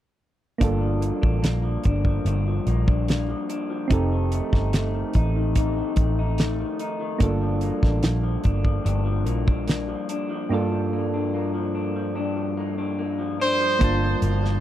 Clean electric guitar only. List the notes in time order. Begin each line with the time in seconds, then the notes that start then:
0.60 G2 D4
0.82 F3
1.01 A#3
1.22 D4
1.43 A#3
1.63 F3
1.85 D4
2.06 F3
2.27 G2 D4
2.47 F3
2.68 A#3
2.87 D4
3.09 A#3
3.29 F3
3.50 D4
3.70 F3
3.91 F2 D#4
4.12 D#3
4.33 A3
4.53 D#4
4.73 A3
4.94 D#3
5.16 D#4
5.36 D#3
5.57 F2 D#4
5.77 D#3
5.98 A3
6.19 D#4
6.40 A3
6.60 D#3
6.80 D#4
7.00 D#3
7.22 G2 D4
7.41 F3
7.62 A#3
7.83 D4
8.02 A#3
8.24 F3
8.44 D4
8.64 F3
8.84 G2 D4
9.06 F3
9.26 A#3
9.47 D4
9.67 A#3
9.88 F3
10.10 D4
10.30 F3
10.51 G2 D4
10.72 F3
10.93 A#3
11.14 D4
11.34 A#3
11.55 F3
11.75 D4
11.96 F3
12.15 G2 D4
12.36 F3
12.57 A#3
12.78 D4
12.99 A#3
13.19 F3
13.40 D4
13.61 F3
13.82 G2
14.02 F3
14.22 A#3
14.43 F3